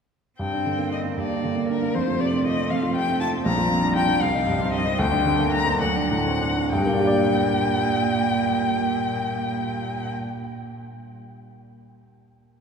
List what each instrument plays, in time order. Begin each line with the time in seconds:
0.39 grand piano G2, cello C4, violin G5
0.53 grand piano D4
0.66 grand piano D3
0.78 grand piano A#3
0.91 grand piano D4, violin D#5
1.05 grand piano A#3
1.17 grand piano G2, cello A#3, violin D5
1.30 grand piano D4
1.44 grand piano D3
1.56 grand piano A#3
1.69 grand piano D4, violin A#4
1.82 grand piano A#3
1.95 grand piano F2, cello A3, violin C5
2.07 grand piano F4
2.20 grand piano C3, violin D5
2.32 grand piano C4
2.45 grand piano F4, violin D#5
2.57 grand piano C4
2.70 grand piano F2, violin F5
2.83 grand piano F4
2.95 grand piano C3, violin G5
3.08 grand piano C4
3.21 grand piano F4, violin A5
3.33 grand piano C4
3.45 grand piano A#1, cello G3, violin A#5
3.57 grand piano F4
3.70 grand piano F2
3.83 grand piano D4
3.95 grand piano F4, violin G5
4.08 grand piano D4
4.21 grand piano C2, violin F5
4.34 grand piano D#4
4.47 grand piano G2
4.60 grand piano C4
4.72 grand piano D#4, violin D#5
4.86 grand piano C4
4.99 grand piano D2, violin G5
5.12 grand piano D4
5.25 grand piano D3
5.39 grand piano A#3
5.52 grand piano D4, violin A#5
5.66 grand piano A#3
5.81 grand piano D2, cello F#3, violin F#5
5.96 grand piano D4
6.11 grand piano A2
6.26 grand piano C4
6.41 grand piano D4
6.58 grand piano C4
6.72 grand piano G2, cello A#2, violin G5
6.79 grand piano G3
6.86 grand piano A#3
6.93 grand piano D4
7.00 grand piano G4
7.07 grand piano D5